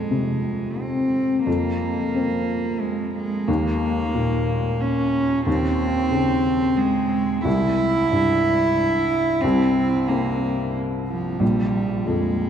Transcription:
0, 0, Header, 1, 3, 480
1, 0, Start_track
1, 0, Key_signature, -4, "minor"
1, 0, Tempo, 672646
1, 1047, Time_signature, 3, 2, 24, 8
1, 2959, Tempo, 661521
1, 9018, End_track
2, 0, Start_track
2, 0, Title_t, "Cello"
2, 0, Program_c, 0, 42
2, 0, Note_on_c, 0, 56, 52
2, 573, Note_on_c, 0, 60, 58
2, 584, Note_off_c, 0, 56, 0
2, 1044, Note_off_c, 0, 60, 0
2, 1049, Note_on_c, 0, 58, 62
2, 2003, Note_on_c, 0, 56, 52
2, 2014, Note_off_c, 0, 58, 0
2, 2238, Note_off_c, 0, 56, 0
2, 2242, Note_on_c, 0, 56, 53
2, 2478, Note_on_c, 0, 58, 67
2, 2489, Note_off_c, 0, 56, 0
2, 3436, Note_on_c, 0, 61, 71
2, 3446, Note_off_c, 0, 58, 0
2, 3908, Note_off_c, 0, 61, 0
2, 3912, Note_on_c, 0, 60, 84
2, 4860, Note_on_c, 0, 56, 70
2, 4871, Note_off_c, 0, 60, 0
2, 5349, Note_off_c, 0, 56, 0
2, 5354, Note_on_c, 0, 64, 90
2, 6779, Note_on_c, 0, 60, 79
2, 6790, Note_off_c, 0, 64, 0
2, 7265, Note_on_c, 0, 58, 64
2, 7276, Note_off_c, 0, 60, 0
2, 7749, Note_off_c, 0, 58, 0
2, 7993, Note_on_c, 0, 53, 56
2, 8219, Note_on_c, 0, 55, 59
2, 8230, Note_off_c, 0, 53, 0
2, 8708, Note_on_c, 0, 56, 55
2, 8719, Note_off_c, 0, 55, 0
2, 9018, Note_off_c, 0, 56, 0
2, 9018, End_track
3, 0, Start_track
3, 0, Title_t, "Felt piano"
3, 0, Program_c, 1, 0
3, 0, Control_c, 1, 64, 127
3, 0, Note_on_c, 1, 41, 37
3, 77, Note_on_c, 1, 48, 30
3, 1016, Note_off_c, 1, 41, 0
3, 1046, Note_on_c, 1, 41, 42
3, 1060, Control_c, 1, 64, 0
3, 1196, Control_c, 1, 64, 127
3, 1536, Note_on_c, 1, 60, 31
3, 1623, Note_off_c, 1, 48, 0
3, 2453, Note_off_c, 1, 41, 0
3, 2483, Note_on_c, 1, 39, 47
3, 2486, Note_off_c, 1, 60, 0
3, 2495, Control_c, 1, 64, 0
3, 2606, Control_c, 1, 64, 127
3, 2956, Note_on_c, 1, 46, 36
3, 3887, Note_off_c, 1, 39, 0
3, 3914, Note_on_c, 1, 39, 49
3, 3928, Control_c, 1, 64, 0
3, 4030, Control_c, 1, 64, 127
3, 4381, Note_on_c, 1, 49, 37
3, 4479, Note_off_c, 1, 46, 0
3, 5330, Note_off_c, 1, 39, 0
3, 5354, Note_on_c, 1, 36, 51
3, 5357, Note_off_c, 1, 49, 0
3, 5373, Control_c, 1, 64, 0
3, 5501, Control_c, 1, 64, 127
3, 5838, Note_on_c, 1, 43, 36
3, 6758, Note_off_c, 1, 36, 0
3, 6796, Note_on_c, 1, 36, 51
3, 6805, Control_c, 1, 64, 0
3, 6903, Control_c, 1, 64, 127
3, 7278, Note_on_c, 1, 60, 38
3, 7369, Note_off_c, 1, 43, 0
3, 8205, Note_off_c, 1, 36, 0
3, 8221, Note_on_c, 1, 34, 46
3, 8234, Note_off_c, 1, 60, 0
3, 8244, Control_c, 1, 64, 0
3, 8349, Control_c, 1, 64, 127
3, 8706, Note_on_c, 1, 41, 30
3, 9018, Note_off_c, 1, 34, 0
3, 9018, Note_off_c, 1, 41, 0
3, 9018, End_track
0, 0, End_of_file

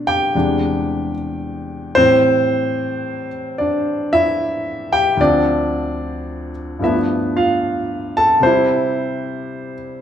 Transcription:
0, 0, Header, 1, 2, 480
1, 0, Start_track
1, 0, Tempo, 807537
1, 1165, Time_signature, 4, 2, 24, 8
1, 5953, End_track
2, 0, Start_track
2, 0, Title_t, "Grand piano"
2, 0, Program_c, 0, 0
2, 0, Control_c, 0, 64, 127
2, 0, Note_on_c, 0, 47, 52
2, 0, Note_on_c, 0, 50, 47
2, 0, Note_on_c, 0, 57, 49
2, 0, Note_on_c, 0, 62, 60
2, 0, Note_on_c, 0, 74, 81
2, 43, Note_on_c, 0, 79, 101
2, 52, Note_on_c, 0, 67, 73
2, 192, Note_off_c, 0, 47, 0
2, 201, Note_off_c, 0, 50, 0
2, 207, Note_on_c, 0, 40, 50
2, 208, Note_off_c, 0, 62, 0
2, 209, Note_on_c, 0, 48, 44
2, 211, Note_on_c, 0, 55, 42
2, 212, Note_off_c, 0, 57, 0
2, 214, Note_on_c, 0, 56, 47
2, 215, Note_off_c, 0, 74, 0
2, 215, Control_c, 0, 64, 0
2, 217, Note_on_c, 0, 62, 58
2, 332, Control_c, 0, 64, 127
2, 661, Note_off_c, 0, 79, 0
2, 665, Note_off_c, 0, 67, 0
2, 1159, Note_on_c, 0, 72, 112
2, 1162, Note_off_c, 0, 55, 0
2, 1166, Note_off_c, 0, 40, 0
2, 1166, Note_on_c, 0, 45, 52
2, 1167, Note_off_c, 0, 48, 0
2, 1168, Note_on_c, 0, 52, 46
2, 1169, Note_off_c, 0, 56, 0
2, 1171, Note_off_c, 0, 62, 0
2, 1171, Note_on_c, 0, 55, 45
2, 1173, Control_c, 0, 64, 0
2, 1173, Note_on_c, 0, 60, 91
2, 1262, Control_c, 0, 64, 127
2, 1936, Note_off_c, 0, 72, 0
2, 1943, Note_off_c, 0, 60, 0
2, 2130, Note_on_c, 0, 74, 68
2, 2142, Note_on_c, 0, 62, 52
2, 2430, Note_off_c, 0, 62, 0
2, 2453, Note_on_c, 0, 76, 105
2, 2455, Note_off_c, 0, 74, 0
2, 2455, Note_on_c, 0, 64, 68
2, 2905, Note_off_c, 0, 64, 0
2, 2926, Note_on_c, 0, 67, 67
2, 2928, Note_on_c, 0, 79, 101
2, 2942, Note_off_c, 0, 76, 0
2, 3072, Note_on_c, 0, 38, 59
2, 3075, Note_off_c, 0, 67, 0
2, 3075, Note_off_c, 0, 79, 0
2, 3081, Note_on_c, 0, 50, 54
2, 3084, Note_off_c, 0, 45, 0
2, 3086, Note_off_c, 0, 52, 0
2, 3087, Note_off_c, 0, 55, 0
2, 3091, Note_on_c, 0, 53, 53
2, 3092, Control_c, 0, 64, 0
2, 3095, Note_on_c, 0, 74, 92
2, 3096, Note_on_c, 0, 62, 75
2, 3098, Note_on_c, 0, 60, 65
2, 3197, Control_c, 0, 64, 127
2, 3865, Note_off_c, 0, 62, 0
2, 3865, Note_off_c, 0, 74, 0
2, 4036, Note_on_c, 0, 43, 54
2, 4038, Note_off_c, 0, 38, 0
2, 4039, Note_off_c, 0, 53, 0
2, 4043, Note_off_c, 0, 50, 0
2, 4048, Note_on_c, 0, 53, 54
2, 4051, Note_off_c, 0, 60, 0
2, 4051, Control_c, 0, 64, 0
2, 4055, Note_on_c, 0, 57, 52
2, 4056, Note_on_c, 0, 64, 59
2, 4064, Note_on_c, 0, 76, 76
2, 4069, Note_on_c, 0, 59, 64
2, 4126, Note_off_c, 0, 64, 0
2, 4134, Note_off_c, 0, 76, 0
2, 4164, Control_c, 0, 64, 127
2, 4377, Note_on_c, 0, 65, 68
2, 4378, Note_on_c, 0, 77, 83
2, 4827, Note_off_c, 0, 65, 0
2, 4828, Note_off_c, 0, 77, 0
2, 4856, Note_on_c, 0, 81, 94
2, 4862, Note_on_c, 0, 69, 70
2, 4994, Note_on_c, 0, 48, 62
2, 5000, Note_off_c, 0, 81, 0
2, 5001, Note_off_c, 0, 43, 0
2, 5004, Note_off_c, 0, 69, 0
2, 5004, Note_on_c, 0, 55, 61
2, 5007, Note_off_c, 0, 53, 0
2, 5010, Note_off_c, 0, 57, 0
2, 5011, Note_on_c, 0, 72, 92
2, 5012, Control_c, 0, 64, 0
2, 5014, Note_on_c, 0, 60, 55
2, 5018, Note_off_c, 0, 59, 0
2, 5027, Note_on_c, 0, 64, 74
2, 5123, Control_c, 0, 64, 127
2, 5785, Note_off_c, 0, 72, 0
2, 5953, Note_off_c, 0, 48, 0
2, 5953, Note_off_c, 0, 55, 0
2, 5953, Note_off_c, 0, 60, 0
2, 5953, Note_off_c, 0, 64, 0
2, 5953, End_track
0, 0, End_of_file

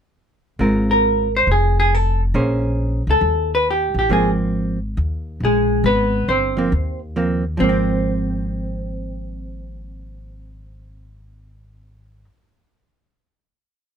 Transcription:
0, 0, Header, 1, 4, 480
1, 0, Start_track
1, 0, Key_signature, -4, "major"
1, 0, Tempo, 437318
1, 663, Time_signature, 4, 2, 24, 8
1, 15325, End_track
2, 0, Start_track
2, 0, Title_t, "Hollow-body jazz guitar"
2, 0, Program_c, 0, 26
2, 997, Note_on_c, 0, 70, 72
2, 1437, Note_off_c, 0, 70, 0
2, 1498, Note_on_c, 0, 72, 85
2, 1635, Note_off_c, 0, 72, 0
2, 1663, Note_on_c, 0, 68, 70
2, 1955, Note_off_c, 0, 68, 0
2, 1972, Note_on_c, 0, 68, 80
2, 2135, Note_off_c, 0, 68, 0
2, 2135, Note_on_c, 0, 69, 62
2, 2431, Note_off_c, 0, 69, 0
2, 3409, Note_on_c, 0, 69, 81
2, 3844, Note_off_c, 0, 69, 0
2, 3893, Note_on_c, 0, 71, 86
2, 4033, Note_off_c, 0, 71, 0
2, 4067, Note_on_c, 0, 67, 71
2, 4358, Note_off_c, 0, 67, 0
2, 4376, Note_on_c, 0, 67, 70
2, 4515, Note_off_c, 0, 67, 0
2, 4529, Note_on_c, 0, 68, 75
2, 4715, Note_off_c, 0, 68, 0
2, 5978, Note_on_c, 0, 68, 70
2, 5983, Note_on_c, 0, 56, 54
2, 6410, Note_off_c, 0, 68, 0
2, 6413, Note_off_c, 0, 56, 0
2, 6429, Note_on_c, 0, 71, 77
2, 6440, Note_on_c, 0, 59, 53
2, 6876, Note_off_c, 0, 71, 0
2, 6882, Note_off_c, 0, 59, 0
2, 6901, Note_on_c, 0, 72, 71
2, 6916, Note_on_c, 0, 60, 60
2, 7664, Note_off_c, 0, 72, 0
2, 7672, Note_off_c, 0, 60, 0
2, 8343, Note_on_c, 0, 60, 75
2, 13432, Note_off_c, 0, 60, 0
2, 15325, End_track
3, 0, Start_track
3, 0, Title_t, "Hollow-body jazz guitar"
3, 0, Program_c, 1, 26
3, 651, Note_on_c, 1, 56, 50
3, 663, Note_on_c, 1, 60, 48
3, 665, Note_on_c, 1, 65, 51
3, 671, Note_on_c, 1, 70, 49
3, 1393, Note_off_c, 1, 56, 0
3, 1399, Note_off_c, 1, 60, 0
3, 1400, Note_off_c, 1, 65, 0
3, 1403, Note_off_c, 1, 70, 0
3, 2574, Note_on_c, 1, 58, 54
3, 2578, Note_on_c, 1, 61, 58
3, 2583, Note_on_c, 1, 68, 56
3, 2585, Note_on_c, 1, 72, 49
3, 3315, Note_off_c, 1, 58, 0
3, 3317, Note_off_c, 1, 61, 0
3, 3320, Note_off_c, 1, 68, 0
3, 3321, Note_off_c, 1, 72, 0
3, 4499, Note_on_c, 1, 53, 54
3, 4505, Note_on_c, 1, 58, 61
3, 4516, Note_on_c, 1, 60, 61
3, 5239, Note_off_c, 1, 53, 0
3, 5242, Note_off_c, 1, 58, 0
3, 5248, Note_off_c, 1, 60, 0
3, 7208, Note_on_c, 1, 53, 51
3, 7225, Note_on_c, 1, 58, 58
3, 7227, Note_on_c, 1, 60, 57
3, 7362, Note_off_c, 1, 53, 0
3, 7371, Note_off_c, 1, 58, 0
3, 7372, Note_off_c, 1, 60, 0
3, 7860, Note_on_c, 1, 53, 50
3, 7866, Note_on_c, 1, 58, 54
3, 7875, Note_on_c, 1, 60, 46
3, 8155, Note_off_c, 1, 53, 0
3, 8158, Note_off_c, 1, 58, 0
3, 8163, Note_off_c, 1, 60, 0
3, 8312, Note_on_c, 1, 53, 58
3, 8381, Note_on_c, 1, 58, 54
3, 8442, Note_on_c, 1, 60, 63
3, 13446, Note_off_c, 1, 53, 0
3, 13515, Note_off_c, 1, 58, 0
3, 13575, Note_off_c, 1, 60, 0
3, 15325, End_track
4, 0, Start_track
4, 0, Title_t, "Upright bass"
4, 0, Program_c, 2, 32
4, 649, Note_on_c, 2, 32, 73
4, 1571, Note_off_c, 2, 32, 0
4, 1613, Note_on_c, 2, 29, 75
4, 2533, Note_off_c, 2, 29, 0
4, 2568, Note_on_c, 2, 34, 72
4, 3333, Note_off_c, 2, 34, 0
4, 3369, Note_on_c, 2, 37, 70
4, 3516, Note_off_c, 2, 37, 0
4, 3523, Note_on_c, 2, 39, 75
4, 4291, Note_off_c, 2, 39, 0
4, 4328, Note_on_c, 2, 33, 67
4, 4483, Note_off_c, 2, 33, 0
4, 4491, Note_on_c, 2, 32, 70
4, 5415, Note_off_c, 2, 32, 0
4, 5456, Note_on_c, 2, 39, 76
4, 5908, Note_off_c, 2, 39, 0
4, 5931, Note_on_c, 2, 34, 67
4, 6385, Note_off_c, 2, 34, 0
4, 6407, Note_on_c, 2, 32, 78
4, 6864, Note_off_c, 2, 32, 0
4, 6896, Note_on_c, 2, 31, 63
4, 7349, Note_off_c, 2, 31, 0
4, 7376, Note_on_c, 2, 39, 77
4, 8301, Note_off_c, 2, 39, 0
4, 8344, Note_on_c, 2, 32, 77
4, 13434, Note_off_c, 2, 32, 0
4, 15325, End_track
0, 0, End_of_file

